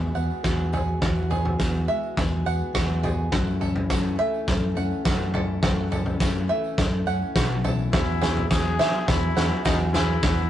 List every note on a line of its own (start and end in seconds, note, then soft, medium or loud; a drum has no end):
0.00 0.13 E2 medium
0.00 0.38 B2 medium
0.00 0.15 E3 medium
0.00 0.99 G#3 soft
0.00 0.15 B3 soft
0.00 0.16 B3 medium
0.00 0.14 F#4 medium
0.00 0.43 F#4 medium
0.00 0.73 F#4 medium
0.00 0.13 G#4 medium
0.00 0.15 G#4 medium
0.00 0.73 E5 medium
0.14 0.29 E2 medium
0.14 0.43 B3 soft
0.14 0.44 F#4 soft
0.14 0.44 G#4 soft
0.14 1.31 F#5 medium
0.14 tambourine medium
0.30 tambourine soft
0.44 0.98 E2 medium
0.44 0.73 E3 medium
0.44 0.73 B3 medium
0.44 1.01 F#4 medium
0.44 0.73 F#4 medium
0.44 0.71 G#4 medium
0.44 kick medium
0.44 snare soft
0.44 tambourine medium
0.59 tambourine soft
0.72 1.01 B3 soft
0.72 1.02 F#4 soft
0.72 1.02 G#4 soft
0.72 1.29 G#4 medium
0.72 floor tom medium
0.72 tambourine soft
1.01 1.54 E2 medium
1.01 1.56 E2 medium
1.01 1.31 E3 medium
1.01 1.31 B3 medium
1.01 1.58 F#4 medium
1.01 1.30 F#4 medium
1.01 1.29 G#4 medium
1.01 kick loud
1.01 snare medium
1.01 floor tom medium
1.17 tambourine soft
1.30 1.58 B3 soft
1.30 1.59 F#4 soft
1.30 1.59 G#4 soft
1.30 2.46 G#4 medium
1.30 floor tom medium
1.30 tambourine medium
1.45 floor tom medium
1.59 1.86 E2 medium
1.59 1.88 E3 medium
1.59 1.89 B3 medium
1.59 2.73 F#4 medium
1.59 1.88 F#4 medium
1.59 1.87 G#4 medium
1.59 kick medium
1.59 snare soft
1.59 tambourine medium
1.88 3.29 G#3 medium
1.88 2.17 B3 soft
1.88 2.17 F#4 soft
1.88 2.17 G#4 soft
1.88 3.04 E5 medium
1.88 tambourine soft
2.03 tambourine soft
2.16 2.44 E2 medium
2.16 2.69 B2 medium
2.16 2.46 E3 medium
2.16 2.47 B3 medium
2.16 2.46 F#4 medium
2.16 2.44 G#4 medium
2.16 kick medium
2.16 snare medium
2.16 floor tom medium
2.16 tambourine medium
2.45 2.60 E2 medium
2.45 2.74 B3 soft
2.45 2.75 F#4 soft
2.45 2.75 G#4 soft
2.45 3.33 F#5 medium
2.45 tambourine medium
2.60 tambourine soft
2.74 3.29 E2 medium
2.74 3.04 E3 medium
2.74 3.04 B3 medium
2.74 3.31 F#4 medium
2.74 3.03 F#4 medium
2.74 3.02 G#4 medium
2.74 kick loud
2.74 snare medium
2.74 tambourine medium
3.03 3.32 B3 soft
3.03 3.33 F#4 soft
3.03 3.32 G#4 soft
3.03 3.33 G#4 medium
3.03 floor tom medium
3.03 tambourine medium
3.32 3.61 F#2 medium
3.32 3.86 F#2 medium
3.32 3.62 C#3 medium
3.32 3.62 E3 medium
3.32 3.61 A3 medium
3.32 3.60 C#4 medium
3.32 5.34 E4 medium
3.32 3.89 F#4 medium
3.32 3.59 A4 medium
3.32 kick loud
3.32 snare medium
3.32 floor tom loud
3.47 tambourine soft
3.60 3.89 E3 soft
3.60 3.89 A3 soft
3.60 3.89 C#4 medium
3.60 3.90 A4 medium
3.60 4.77 A4 medium
3.60 floor tom medium
3.60 tambourine medium
3.76 floor tom medium
3.89 4.19 F#2 medium
3.89 4.17 F#2 medium
3.89 4.19 C#3 medium
3.89 4.19 E3 medium
3.89 4.42 F#3 medium
3.89 4.18 A3 medium
3.89 4.17 C#4 medium
3.89 5.04 F#4 medium
3.89 4.16 A4 medium
3.89 kick medium
3.89 snare medium
3.89 tambourine medium
4.18 4.46 E3 soft
4.18 4.46 A3 soft
4.18 4.47 C#4 soft
4.18 4.47 A4 medium
4.18 5.34 E5 medium
4.18 tambourine soft
4.34 tambourine soft
4.47 4.75 F#2 medium
4.47 5.00 C#3 medium
4.47 4.76 E3 medium
4.47 4.76 A3 medium
4.47 4.75 C#4 medium
4.47 4.74 A4 medium
4.47 kick medium
4.47 snare medium
4.47 floor tom loud
4.47 tambourine medium
4.75 4.91 F#2 medium
4.75 5.04 E3 soft
4.75 5.04 A3 soft
4.75 5.04 C#4 soft
4.75 5.04 A4 medium
4.75 5.92 F#5 medium
4.75 tambourine medium
4.91 tambourine soft
5.04 5.34 F#2 medium
5.04 5.59 F#2 medium
5.04 5.34 C#3 medium
5.04 5.34 E3 medium
5.04 5.57 F#3 medium
5.04 5.34 A3 medium
5.04 5.33 C#4 medium
5.04 5.62 F#4 medium
5.04 5.32 A4 medium
5.04 kick loud
5.04 snare medium
5.04 tambourine medium
5.20 tambourine soft
5.33 5.61 E3 soft
5.33 5.62 A3 soft
5.33 5.62 C#4 medium
5.33 5.62 E4 medium
5.33 5.62 A4 medium
5.33 5.91 A4 medium
5.33 floor tom medium
5.61 5.91 F#2 medium
5.61 6.17 F#2 medium
5.61 5.92 C#3 medium
5.61 5.91 E3 medium
5.61 5.91 A3 medium
5.61 5.90 C#4 medium
5.61 7.65 E4 medium
5.61 6.20 F#4 medium
5.61 5.89 A4 medium
5.61 kick medium
5.61 snare medium
5.61 floor tom loud
5.61 tambourine soft
5.90 6.19 E3 soft
5.90 6.19 A3 soft
5.90 6.19 C#4 soft
5.90 6.20 A4 medium
5.90 7.07 A4 medium
5.90 floor tom medium
5.90 tambourine medium
6.06 floor tom medium
6.06 tambourine soft
6.19 6.49 F#2 medium
6.19 6.47 F#2 medium
6.19 6.49 C#3 medium
6.19 6.49 E3 medium
6.19 6.73 F#3 medium
6.19 6.49 A3 medium
6.19 6.48 C#4 medium
6.19 7.34 F#4 medium
6.19 6.47 A4 medium
6.19 kick medium
6.19 snare medium
6.19 tambourine medium
6.48 6.76 E3 soft
6.48 6.77 A3 soft
6.48 6.77 C#4 soft
6.48 6.78 A4 medium
6.48 7.65 E5 medium
6.48 tambourine soft
6.64 tambourine soft
6.77 7.05 F#2 medium
6.77 7.30 C#3 medium
6.77 7.07 E3 medium
6.77 7.07 A3 medium
6.77 7.06 C#4 medium
6.77 7.05 A4 medium
6.77 kick medium
6.77 snare medium
6.77 floor tom medium
6.77 tambourine medium
7.06 7.21 F#2 medium
7.06 7.34 E3 soft
7.06 7.35 A3 soft
7.06 7.35 C#4 soft
7.06 7.35 A4 soft
7.06 7.93 F#5 medium
7.06 tambourine medium
7.35 7.90 B1 medium
7.35 7.64 F#2 medium
7.35 7.64 C#3 medium
7.35 7.65 E3 medium
7.35 7.87 F#3 medium
7.35 7.64 A3 medium
7.35 7.63 C#4 medium
7.35 7.92 F#4 medium
7.35 7.62 A4 medium
7.35 kick loud
7.35 snare medium
7.35 tambourine medium
7.63 7.90 E3 soft
7.63 7.92 A3 soft
7.63 7.92 C#4 medium
7.63 10.24 E4 soft
7.63 7.93 A4 soft
7.63 7.94 A4 medium
7.63 floor tom medium
7.63 tambourine medium
7.79 tambourine soft
7.92 8.47 E2 medium
7.92 8.21 E3 medium
7.92 8.22 B3 medium
7.92 8.47 E4 medium
7.92 8.21 F#4 medium
7.92 8.49 F#4 medium
7.92 8.19 G#4 medium
7.92 kick loud
7.92 snare medium
7.92 floor tom loud
8.08 tambourine soft
8.20 8.49 B3 soft
8.20 8.49 F#4 medium
8.20 8.50 G#4 medium
8.20 9.37 G#4 medium
8.20 snare medium
8.20 floor tom medium
8.20 tambourine medium
8.37 floor tom medium
8.49 8.78 E2 medium
8.49 8.79 E3 medium
8.49 8.80 B3 medium
8.49 9.64 F#4 medium
8.49 8.78 F#4 medium
8.49 9.10 G#4 loud
8.49 8.77 G#4 medium
8.49 kick medium
8.49 snare medium
8.49 tambourine medium
8.78 9.06 B3 soft
8.78 9.07 F#4 soft
8.78 9.08 G#4 soft
8.78 9.95 E5 medium
8.78 snare medium
8.78 tambourine soft
8.94 tambourine soft
9.07 9.35 E2 medium
9.07 9.36 E3 medium
9.07 9.37 B3 medium
9.07 9.65 E4 loud
9.07 9.36 F#4 medium
9.07 9.35 G#4 medium
9.07 kick loud
9.07 snare medium
9.07 floor tom loud
9.07 tambourine medium
9.36 9.50 E2 medium
9.36 9.64 B3 soft
9.36 9.65 F#4 medium
9.36 9.65 G#4 medium
9.36 10.50 F#5 medium
9.36 snare medium
9.36 tambourine medium
9.65 10.19 E2 medium
9.65 9.94 E3 medium
9.65 9.95 B3 medium
9.65 9.79 D#4 medium
9.65 10.22 F#4 medium
9.65 9.94 F#4 medium
9.65 9.92 G#4 medium
9.65 kick loud
9.65 snare medium
9.65 tambourine medium
9.93 10.21 B3 soft
9.93 10.50 E4 medium
9.93 10.22 F#4 soft
9.93 10.22 G#4 medium
9.93 10.50 G#4 medium
9.93 snare medium
9.93 floor tom medium
9.93 tambourine medium
10.22 10.50 E2 medium
10.22 10.50 E3 medium
10.22 10.50 B3 medium
10.22 10.50 F#4 medium
10.22 10.50 G#4 medium
10.22 kick loud
10.22 snare medium
10.22 floor tom loud
10.37 tambourine soft